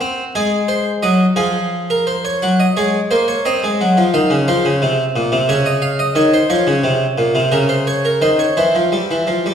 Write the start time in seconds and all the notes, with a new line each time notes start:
Already playing: F#4
0.01 C4
0.35 G#3 G#4
0.68 C5
1.03 F#3 D#5
1.36 F3 G#4
1.90 A#4
2.07 C5
2.25 C#5
2.42 F#3 F#5
2.60 D#5
2.77 G#3 C#5
3.11 A#3 C5
3.28 C#5
3.45 C4 D#5
3.63 G#3
3.81 F#3
3.97 F3
4.14 D#3 F5
4.30 C#3
4.48 F3 C5
4.65 C#3
4.82 C3
5.16 A#2
5.32 C3
5.49 C#3 C#5
5.66 D#5
5.82 F5
5.99 D#5
6.15 D#3 C#5
6.34 C5
6.50 F3 C#5
6.67 C#3
6.84 C3
7.18 A#2
7.35 C3
7.52 C#3 A#4
7.69 C5
7.87 C#5
8.05 A#4
8.22 D#3 C5
8.39 C#5
8.57 E3 C5
8.75 F3
8.92 G3
9.11 E3
9.27 F3
9.46 G3